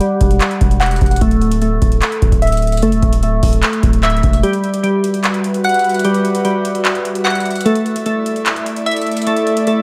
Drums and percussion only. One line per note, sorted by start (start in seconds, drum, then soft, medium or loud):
0.00 closed hi-hat medium
0.21 kick medium
0.21 closed hi-hat medium
0.31 closed hi-hat medium
0.40 clap loud
0.40 closed hi-hat medium
0.51 closed hi-hat soft
0.61 kick loud
0.61 closed hi-hat medium
0.71 closed hi-hat medium
0.81 clap loud
0.81 closed hi-hat medium
0.86 closed hi-hat medium
0.91 closed hi-hat medium
0.96 closed hi-hat medium
1.01 kick loud
1.01 closed hi-hat soft
1.06 closed hi-hat medium
1.11 closed hi-hat medium
1.16 closed hi-hat medium
1.21 kick loud
1.21 closed hi-hat medium
1.31 closed hi-hat medium
1.41 closed hi-hat medium
1.52 closed hi-hat medium
1.62 closed hi-hat medium
1.82 kick medium
1.82 closed hi-hat medium
1.92 closed hi-hat medium
2.02 clap loud
2.02 closed hi-hat medium
2.12 closed hi-hat soft
2.22 kick loud
2.22 closed hi-hat medium
2.32 kick medium
2.32 closed hi-hat medium
2.42 closed hi-hat medium
2.47 closed hi-hat medium
2.52 closed hi-hat medium
2.57 closed hi-hat medium
2.62 closed hi-hat soft
2.67 closed hi-hat medium
2.72 closed hi-hat medium
2.77 closed hi-hat medium
2.82 closed hi-hat medium
2.92 closed hi-hat medium
3.02 kick loud
3.02 closed hi-hat medium
3.13 closed hi-hat medium
3.23 closed hi-hat medium
3.43 kick medium
3.43 open hi-hat medium
3.53 closed hi-hat medium
3.63 clap loud
3.63 closed hi-hat medium
3.73 closed hi-hat medium
3.83 kick medium
3.83 closed hi-hat medium
3.93 closed hi-hat medium
4.03 clap loud
4.03 closed hi-hat medium
4.10 closed hi-hat medium
4.17 closed hi-hat soft
4.23 kick loud
4.23 closed hi-hat medium
4.33 closed hi-hat medium
4.43 closed hi-hat medium
4.53 closed hi-hat medium
4.64 closed hi-hat medium
4.74 closed hi-hat medium
4.84 closed hi-hat medium
5.04 closed hi-hat medium
5.14 closed hi-hat medium
5.24 clap loud
5.24 closed hi-hat medium
5.34 closed hi-hat medium
5.44 closed hi-hat medium
5.54 closed hi-hat medium
5.64 closed hi-hat medium
5.69 closed hi-hat medium
5.74 closed hi-hat medium
5.79 closed hi-hat medium
5.84 closed hi-hat soft
5.89 closed hi-hat medium
5.94 closed hi-hat medium
5.99 closed hi-hat medium
6.04 closed hi-hat medium
6.14 closed hi-hat medium
6.25 closed hi-hat medium
6.35 closed hi-hat loud
6.45 closed hi-hat medium
6.65 closed hi-hat medium
6.75 closed hi-hat medium
6.85 clap loud
6.85 closed hi-hat medium
6.95 closed hi-hat medium
7.05 closed hi-hat medium
7.15 closed hi-hat medium
7.25 clap loud
7.25 closed hi-hat medium
7.30 closed hi-hat medium
7.35 closed hi-hat medium
7.40 closed hi-hat medium
7.45 closed hi-hat soft
7.51 closed hi-hat medium
7.56 closed hi-hat medium
7.61 closed hi-hat medium
7.66 closed hi-hat medium
7.75 closed hi-hat medium
7.86 closed hi-hat medium
7.96 closed hi-hat medium
8.06 closed hi-hat medium
8.26 closed hi-hat medium
8.36 closed hi-hat medium
8.46 clap loud
8.46 closed hi-hat medium
8.56 closed hi-hat soft
8.66 closed hi-hat medium
8.76 closed hi-hat medium
8.86 closed hi-hat medium
8.91 closed hi-hat medium
8.96 closed hi-hat medium
9.02 closed hi-hat medium
9.07 closed hi-hat soft
9.12 closed hi-hat medium
9.17 closed hi-hat medium
9.22 closed hi-hat medium
9.27 closed hi-hat medium
9.36 closed hi-hat medium
9.47 closed hi-hat medium
9.57 closed hi-hat medium
9.67 closed hi-hat medium